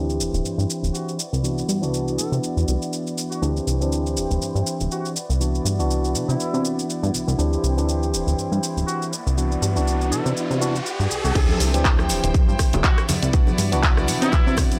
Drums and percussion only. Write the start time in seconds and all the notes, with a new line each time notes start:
0.10 shaker
0.20 shaker
0.34 shaker
0.45 shaker
0.59 shaker
0.70 shaker
0.84 shaker
0.95 shaker
1.09 shaker
1.19 shaker
1.34 shaker
1.44 shaker
1.58 shaker
1.69 shaker
1.83 shaker
1.94 shaker
2.08 shaker
2.19 shaker
2.33 shaker
2.43 shaker
2.57 shaker
2.68 shaker
2.82 shaker
2.93 shaker
3.07 shaker
3.18 shaker
3.32 shaker
3.43 shaker
3.57 shaker
3.68 shaker
3.81 shaker
3.92 shaker
4.06 shaker
4.17 shaker
4.31 shaker
4.42 shaker
4.56 shaker
4.67 shaker
4.80 shaker
4.91 shaker
5.05 shaker
5.16 shaker
5.30 shaker
5.41 shaker
5.55 shaker
5.66 shaker
5.80 shaker
5.91 shaker
6.04 shaker
6.15 shaker
6.29 shaker
6.40 shaker
6.54 shaker
6.65 shaker
6.79 shaker
6.90 shaker
7.04 shaker
7.14 shaker
7.28 shaker
7.39 shaker
7.53 shaker
7.64 shaker
7.78 shaker
7.89 shaker
8.03 shaker
8.14 shaker
8.28 shaker
8.39 shaker
8.52 shaker
8.63 shaker
8.77 shaker
8.88 shaker
9.02 shaker
9.13 shaker
9.27 shaker
9.38 shaker
9.52 shaker
9.63 shaker
9.76 shaker
9.87 shaker
10.01 shaker
10.12 shaker
10.26 shaker
10.37 shaker
10.51 shaker
10.62 shaker
10.75 shaker
10.86 shaker
11.00 shaker
11.11 shaker
11.25 shaker
11.35 kick, closed hi-hat, crash, maracas, shaker
11.49 high conga, shaker
11.60 open hi-hat, maracas, shaker
11.74 closed hi-hat, maracas, shaker
11.85 kick, clap, closed hi-hat, maracas, shaker
11.98 cross-stick, high conga, shaker
12.09 open hi-hat, maracas, shaker
12.24 closed hi-hat, maracas, shaker
12.34 kick, closed hi-hat, high conga, shaker, maracas
12.49 shaker
12.59 kick, cross-stick, open hi-hat, maracas, shaker
12.73 closed hi-hat, high conga, low conga, maracas, shaker
12.84 kick, clap, closed hi-hat, maracas, shaker
12.98 cross-stick, closed hi-hat, shaker
13.09 open hi-hat, high conga, low conga, maracas, shaker
13.23 closed hi-hat, shaker, maracas
13.33 kick, closed hi-hat, maracas, shaker
13.47 high conga, shaker
13.58 open hi-hat, maracas, shaker
13.72 closed hi-hat, maracas, shaker
13.83 kick, clap, closed hi-hat, maracas, shaker
13.97 cross-stick, high conga, shaker
14.08 open hi-hat, maracas, shaker
14.22 closed hi-hat, maracas, shaker
14.32 kick, clap, closed hi-hat, high conga, maracas, shaker
14.47 shaker
14.57 kick, cross-stick, open hi-hat, low conga, maracas, shaker
14.71 closed hi-hat, high conga, maracas, shaker